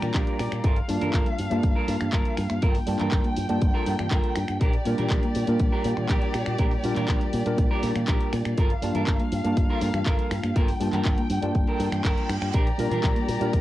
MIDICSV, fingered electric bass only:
0, 0, Header, 1, 2, 480
1, 0, Start_track
1, 0, Tempo, 495868
1, 623, Time_signature, 4, 2, 24, 8
1, 13174, End_track
2, 0, Start_track
2, 0, Title_t, "Fingered electric bass"
2, 0, Program_c, 0, 33
2, 27, Note_on_c, 0, 46, 95
2, 99, Note_off_c, 0, 46, 0
2, 142, Note_on_c, 0, 34, 75
2, 218, Note_off_c, 0, 34, 0
2, 387, Note_on_c, 0, 46, 85
2, 460, Note_off_c, 0, 46, 0
2, 508, Note_on_c, 0, 46, 79
2, 580, Note_off_c, 0, 46, 0
2, 623, Note_on_c, 0, 31, 92
2, 773, Note_off_c, 0, 31, 0
2, 866, Note_on_c, 0, 43, 84
2, 939, Note_off_c, 0, 43, 0
2, 989, Note_on_c, 0, 43, 84
2, 1060, Note_off_c, 0, 43, 0
2, 1104, Note_on_c, 0, 31, 72
2, 1179, Note_off_c, 0, 31, 0
2, 1350, Note_on_c, 0, 43, 91
2, 1422, Note_off_c, 0, 43, 0
2, 1467, Note_on_c, 0, 43, 86
2, 1539, Note_off_c, 0, 43, 0
2, 1586, Note_on_c, 0, 31, 87
2, 1660, Note_off_c, 0, 31, 0
2, 1822, Note_on_c, 0, 43, 95
2, 1898, Note_off_c, 0, 43, 0
2, 1947, Note_on_c, 0, 43, 94
2, 2019, Note_off_c, 0, 43, 0
2, 2064, Note_on_c, 0, 31, 76
2, 2139, Note_off_c, 0, 31, 0
2, 2305, Note_on_c, 0, 43, 83
2, 2379, Note_off_c, 0, 43, 0
2, 2427, Note_on_c, 0, 43, 79
2, 2499, Note_off_c, 0, 43, 0
2, 2544, Note_on_c, 0, 31, 91
2, 2693, Note_off_c, 0, 31, 0
2, 2785, Note_on_c, 0, 43, 83
2, 2859, Note_off_c, 0, 43, 0
2, 2909, Note_on_c, 0, 43, 84
2, 2980, Note_off_c, 0, 43, 0
2, 3023, Note_on_c, 0, 31, 72
2, 3098, Note_off_c, 0, 31, 0
2, 3267, Note_on_c, 0, 43, 87
2, 3340, Note_off_c, 0, 43, 0
2, 3391, Note_on_c, 0, 43, 86
2, 3461, Note_off_c, 0, 43, 0
2, 3505, Note_on_c, 0, 31, 90
2, 3579, Note_off_c, 0, 31, 0
2, 3749, Note_on_c, 0, 43, 83
2, 3821, Note_off_c, 0, 43, 0
2, 3870, Note_on_c, 0, 43, 96
2, 3941, Note_off_c, 0, 43, 0
2, 3983, Note_on_c, 0, 31, 74
2, 4058, Note_off_c, 0, 31, 0
2, 4227, Note_on_c, 0, 43, 87
2, 4300, Note_off_c, 0, 43, 0
2, 4349, Note_on_c, 0, 43, 76
2, 4420, Note_off_c, 0, 43, 0
2, 4463, Note_on_c, 0, 34, 91
2, 4613, Note_off_c, 0, 34, 0
2, 4705, Note_on_c, 0, 46, 81
2, 4779, Note_off_c, 0, 46, 0
2, 4828, Note_on_c, 0, 46, 79
2, 4900, Note_off_c, 0, 46, 0
2, 4942, Note_on_c, 0, 34, 73
2, 5018, Note_off_c, 0, 34, 0
2, 5185, Note_on_c, 0, 46, 90
2, 5259, Note_off_c, 0, 46, 0
2, 5305, Note_on_c, 0, 46, 83
2, 5378, Note_off_c, 0, 46, 0
2, 5420, Note_on_c, 0, 34, 83
2, 5496, Note_off_c, 0, 34, 0
2, 5660, Note_on_c, 0, 46, 96
2, 5737, Note_off_c, 0, 46, 0
2, 5783, Note_on_c, 0, 46, 92
2, 5857, Note_off_c, 0, 46, 0
2, 5902, Note_on_c, 0, 34, 73
2, 5978, Note_off_c, 0, 34, 0
2, 6143, Note_on_c, 0, 46, 86
2, 6218, Note_off_c, 0, 46, 0
2, 6265, Note_on_c, 0, 46, 82
2, 6338, Note_off_c, 0, 46, 0
2, 6381, Note_on_c, 0, 34, 94
2, 6532, Note_off_c, 0, 34, 0
2, 6623, Note_on_c, 0, 46, 82
2, 6698, Note_off_c, 0, 46, 0
2, 6744, Note_on_c, 0, 46, 80
2, 6818, Note_off_c, 0, 46, 0
2, 6861, Note_on_c, 0, 34, 71
2, 6937, Note_off_c, 0, 34, 0
2, 7101, Note_on_c, 0, 46, 87
2, 7177, Note_off_c, 0, 46, 0
2, 7223, Note_on_c, 0, 46, 84
2, 7297, Note_off_c, 0, 46, 0
2, 7342, Note_on_c, 0, 34, 85
2, 7417, Note_off_c, 0, 34, 0
2, 7582, Note_on_c, 0, 46, 96
2, 7657, Note_off_c, 0, 46, 0
2, 7704, Note_on_c, 0, 46, 95
2, 7778, Note_off_c, 0, 46, 0
2, 7823, Note_on_c, 0, 34, 76
2, 7898, Note_off_c, 0, 34, 0
2, 8065, Note_on_c, 0, 46, 88
2, 8139, Note_off_c, 0, 46, 0
2, 8186, Note_on_c, 0, 46, 80
2, 8259, Note_off_c, 0, 46, 0
2, 8305, Note_on_c, 0, 31, 93
2, 8454, Note_off_c, 0, 31, 0
2, 8546, Note_on_c, 0, 43, 83
2, 8619, Note_off_c, 0, 43, 0
2, 8663, Note_on_c, 0, 43, 82
2, 8737, Note_off_c, 0, 43, 0
2, 8785, Note_on_c, 0, 31, 73
2, 8859, Note_off_c, 0, 31, 0
2, 9024, Note_on_c, 0, 43, 93
2, 9099, Note_off_c, 0, 43, 0
2, 9144, Note_on_c, 0, 43, 86
2, 9218, Note_off_c, 0, 43, 0
2, 9263, Note_on_c, 0, 31, 83
2, 9338, Note_off_c, 0, 31, 0
2, 9502, Note_on_c, 0, 43, 98
2, 9578, Note_off_c, 0, 43, 0
2, 9620, Note_on_c, 0, 43, 97
2, 9696, Note_off_c, 0, 43, 0
2, 9743, Note_on_c, 0, 31, 75
2, 9818, Note_off_c, 0, 31, 0
2, 9983, Note_on_c, 0, 43, 87
2, 10058, Note_off_c, 0, 43, 0
2, 10102, Note_on_c, 0, 43, 79
2, 10177, Note_off_c, 0, 43, 0
2, 10223, Note_on_c, 0, 31, 93
2, 10373, Note_off_c, 0, 31, 0
2, 10460, Note_on_c, 0, 43, 86
2, 10536, Note_off_c, 0, 43, 0
2, 10579, Note_on_c, 0, 43, 82
2, 10655, Note_off_c, 0, 43, 0
2, 10703, Note_on_c, 0, 31, 72
2, 10778, Note_off_c, 0, 31, 0
2, 10939, Note_on_c, 0, 43, 89
2, 11016, Note_off_c, 0, 43, 0
2, 11060, Note_on_c, 0, 43, 83
2, 11136, Note_off_c, 0, 43, 0
2, 11183, Note_on_c, 0, 31, 86
2, 11258, Note_off_c, 0, 31, 0
2, 11418, Note_on_c, 0, 43, 93
2, 11496, Note_off_c, 0, 43, 0
2, 11538, Note_on_c, 0, 43, 93
2, 11615, Note_off_c, 0, 43, 0
2, 11662, Note_on_c, 0, 31, 75
2, 11737, Note_off_c, 0, 31, 0
2, 11899, Note_on_c, 0, 43, 84
2, 11976, Note_off_c, 0, 43, 0
2, 12018, Note_on_c, 0, 43, 78
2, 12095, Note_off_c, 0, 43, 0
2, 12143, Note_on_c, 0, 34, 91
2, 12293, Note_off_c, 0, 34, 0
2, 12379, Note_on_c, 0, 46, 80
2, 12456, Note_off_c, 0, 46, 0
2, 12496, Note_on_c, 0, 46, 83
2, 12574, Note_off_c, 0, 46, 0
2, 12622, Note_on_c, 0, 34, 73
2, 12698, Note_off_c, 0, 34, 0
2, 12860, Note_on_c, 0, 46, 88
2, 12936, Note_off_c, 0, 46, 0
2, 12979, Note_on_c, 0, 46, 85
2, 13055, Note_off_c, 0, 46, 0
2, 13100, Note_on_c, 0, 34, 85
2, 13174, Note_off_c, 0, 34, 0
2, 13174, End_track
0, 0, End_of_file